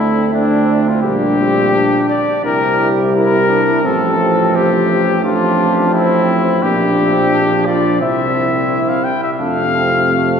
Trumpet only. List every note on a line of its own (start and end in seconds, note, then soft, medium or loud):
0.00 0.33 E4 medium
0.33 0.90 D4 medium
0.88 1.01 F4 medium
1.02 2.06 G4 medium
2.09 2.44 D5 medium
2.45 2.89 A#4 medium
3.15 3.87 A#4 medium
3.85 4.57 A4 medium
4.55 5.24 G4 medium
5.25 5.92 F4 medium
5.94 6.64 E4 medium
6.62 7.67 G4 medium
7.66 8.01 D5 medium
8.02 8.91 E5 medium
8.89 9.06 F5 medium
9.04 9.22 G5 medium
9.23 9.31 E5 medium
9.40 10.40 F5 loud